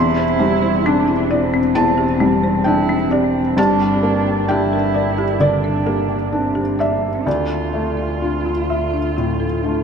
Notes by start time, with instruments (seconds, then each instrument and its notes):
Already playing: double bass E1, felt piano E2 D5 C6, cello E4
0.18 marimba C5
0.39 felt piano G3, marimba C5
0.63 marimba C5
0.86 marimba C4, felt piano D4, cello D4
1.08 marimba E4
1.30 cello C4, marimba E4, felt piano D5
1.54 marimba C4
1.75 felt piano E2 A5, marimba E4
1.98 marimba G4
2.20 felt piano G3, marimba C4
2.43 marimba C5
2.64 felt piano D4 G5, cello E4
2.89 marimba C4
3.11 cello C4, marimba G4, felt piano D5
3.57 double bass G1, felt piano G2 A5, cello D4, marimba G4
3.82 marimba G5
4.03 felt piano A#3, marimba G5
4.28 marimba G5
4.48 felt piano D4 G5, cello E4, marimba G4
4.73 marimba A#4
4.94 marimba A#4, felt piano D5
5.18 marimba G4
5.40 felt piano D3 D5, cello D4, marimba A#4
5.64 marimba D5
5.86 felt piano A#3, marimba G4
6.09 marimba G5
6.32 cello C4, felt piano D4
6.55 marimba G4
6.79 cello A#3, marimba D5, felt piano D5 E5
7.26 felt piano D2 D5, double bass D2, marimba D4, cello F4
7.50 marimba D5
7.73 felt piano A3, marimba D5
7.97 marimba D5
8.21 marimba D4, felt piano F4
8.46 marimba F4
8.70 marimba F4, felt piano E5
8.94 marimba D4
9.17 felt piano A2, marimba F4
9.40 marimba A4
9.63 felt piano A3, marimba D4